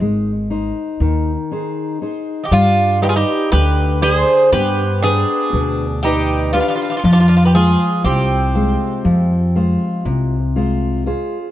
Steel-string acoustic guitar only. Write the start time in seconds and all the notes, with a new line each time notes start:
Already playing: D#4 C5
0.01 G#3
0.50 D#4 C5
1.01 D#3
1.51 D#4 G#4 C5
2.02 D#4 G#4 C5
2.52 G3
3.02 G4 B4 D5
3.53 D3
4.02 D4 D5 G5
4.53 B3
5.03 D4 B4 G5
5.53 B2
6.04 G4 B4 D5
6.54 D4 G4 B4
7.04 F3
7.54 G#3 F4 C5
8.05 C3
8.55 G#3 F4 C5
9.05 F3
9.56 G#3 F4 C5
10.05 C3
10.56 G#3 F4 C5
11.06 F4 G#4 C5